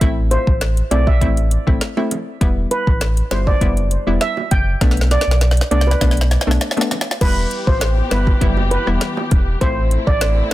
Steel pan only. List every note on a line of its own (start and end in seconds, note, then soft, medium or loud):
0.31 0.41 C5 medium
0.91 1.01 D5 medium
1.07 1.16 E5 medium
2.71 2.81 B4 medium
3.31 3.41 C5 medium
3.47 3.56 D5 medium
4.21 4.31 E5 medium
4.51 4.61 G5 medium
5.11 5.21 D5 medium
5.71 5.81 D5 medium
5.87 5.96 B4 medium
7.21 7.39 B4 medium
7.67 7.76 C5 medium
8.11 8.21 B4 medium
8.71 8.81 B4 medium
9.61 9.71 C5 loud
10.07 10.16 D5 medium